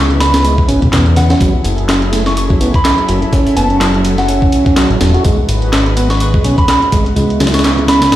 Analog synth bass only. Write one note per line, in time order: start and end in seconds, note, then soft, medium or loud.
0.00 0.63 C#2 loud
0.69 0.77 G#1 medium
0.82 0.89 B1 medium
0.92 1.34 E2 loud
1.41 1.49 F#1 loud
1.64 2.54 F#1 loud
2.61 2.69 A1 loud
3.08 3.25 F#1 medium
3.33 3.41 F#1 loud
3.57 4.47 F#1 loud
4.90 4.97 A1 medium
5.01 5.17 E1 loud
5.25 5.33 G#1 loud
5.49 6.39 G#1 loud
6.45 6.53 B1 loud
6.93 7.09 G#1 medium
7.16 7.25 C#2 loud
7.40 8.12 C#2 loud
8.13 8.16 G#1 medium